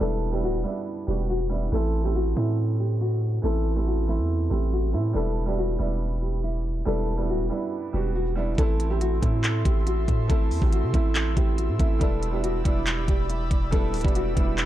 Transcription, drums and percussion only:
8.58 kick loud
8.58 closed hi-hat medium
8.80 closed hi-hat medium
9.01 closed hi-hat medium
9.22 kick loud
9.22 closed hi-hat medium
9.44 clap loud
9.44 closed hi-hat medium
9.65 kick loud
9.65 closed hi-hat medium
9.87 closed hi-hat medium
10.08 kick medium
10.08 closed hi-hat medium
10.30 kick loud
10.30 closed hi-hat medium
10.51 open hi-hat medium
10.62 kick loud
10.72 closed hi-hat medium
10.94 kick loud
10.94 closed hi-hat medium
11.15 clap loud
11.15 closed hi-hat medium
11.37 kick loud
11.37 closed hi-hat medium
11.58 closed hi-hat medium
11.79 kick medium
11.79 closed hi-hat medium
12.01 kick loud
12.01 closed hi-hat medium
12.23 closed hi-hat medium
12.44 closed hi-hat medium
12.65 kick loud
12.65 closed hi-hat medium
12.87 clap loud
12.87 closed hi-hat medium
13.08 kick loud
13.08 closed hi-hat medium
13.30 closed hi-hat medium
13.51 kick medium
13.51 closed hi-hat medium
13.72 kick loud
13.72 closed hi-hat medium
13.94 closed hi-hat medium
13.94 open hi-hat medium
14.01 kick loud
14.01 closed hi-hat medium
14.08 closed hi-hat soft
14.15 closed hi-hat medium
14.37 kick loud
14.37 closed hi-hat medium
14.58 clap loud
14.58 closed hi-hat medium

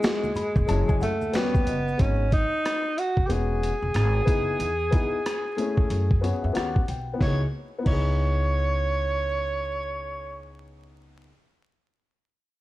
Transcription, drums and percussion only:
0.02 snare loud
0.02 closed hi-hat medium
0.02 maracas medium
0.24 high conga medium
0.24 maracas soft
0.35 closed hi-hat medium
0.35 low conga medium
0.35 maracas soft
0.56 kick medium
0.56 high conga soft
0.56 maracas soft
0.68 closed hi-hat medium
0.68 maracas medium
0.88 kick medium
0.88 maracas soft
1.01 closed hi-hat medium
1.01 maracas soft
1.21 high conga medium
1.21 maracas soft
1.34 snare loud
1.34 closed hi-hat medium
1.34 high conga soft
1.34 maracas medium
1.55 kick loud
1.55 high conga medium
1.55 maracas soft
1.67 closed hi-hat medium
1.67 low conga medium
1.67 maracas soft
1.88 maracas soft
1.99 kick loud
1.99 closed hi-hat medium
2.32 kick medium
2.32 closed hi-hat medium
2.65 cross-stick loud
2.65 closed hi-hat medium
2.98 closed hi-hat medium
3.17 kick medium
3.30 closed hi-hat medium
3.63 closed hi-hat medium
3.94 cross-stick medium
3.94 closed hi-hat medium
4.27 kick medium
4.27 closed hi-hat medium
4.60 closed hi-hat medium
4.93 kick medium
4.93 closed hi-hat medium
5.26 cross-stick loud
5.26 closed hi-hat medium
5.58 closed hi-hat medium
5.77 kick medium
5.90 closed hi-hat medium
6.11 kick medium
6.24 closed hi-hat medium
6.55 cross-stick medium
6.55 closed hi-hat medium
6.76 kick medium
6.88 closed hi-hat medium
7.21 kick medium
7.21 snare medium
7.86 kick medium
7.86 crash medium

